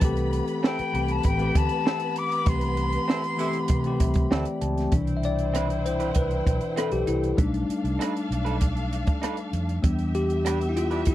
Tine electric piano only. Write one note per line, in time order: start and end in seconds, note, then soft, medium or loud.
0.01 0.73 E3 medium
0.01 0.74 A3 medium
0.01 0.74 C4 medium
0.01 0.75 G4 loud
0.92 1.29 E3 medium
0.92 1.29 A3 medium
0.92 1.30 C4 medium
0.92 1.31 G4 medium
1.37 2.23 E3 medium
1.37 2.23 A3 medium
1.37 2.24 C4 medium
1.37 2.25 G4 medium
2.45 3.18 E3 medium
2.45 3.19 A3 medium
2.45 3.19 C4 medium
2.45 3.20 G4 medium
3.37 3.74 E3 medium
3.37 3.74 A3 medium
3.37 3.75 C4 medium
3.37 3.76 G4 medium
3.83 4.68 E3 medium
3.83 4.69 A3 medium
3.83 4.69 C4 medium
3.83 4.70 G4 medium
4.00 4.29 E5 medium
4.31 4.59 G5 medium
4.61 4.90 A5 medium
4.92 5.33 B2 soft
4.92 5.33 E3 soft
4.92 5.34 D4 medium
5.17 5.23 E5 medium
5.25 5.87 D5 medium
5.86 6.14 C5 medium
6.16 6.73 B4 medium
6.78 6.93 A4 medium
6.92 7.08 G4 medium
7.07 7.39 E4 medium
7.37 7.78 G3 medium
7.37 7.79 A3 medium
7.37 8.88 D4 medium
7.37 7.79 D#4 medium
9.83 10.24 G3 medium
9.83 10.24 B3 soft
9.83 10.25 D4 medium
10.15 10.71 G4 medium
10.69 10.76 E4 medium
10.77 11.08 F4 medium
11.07 11.15 E4 medium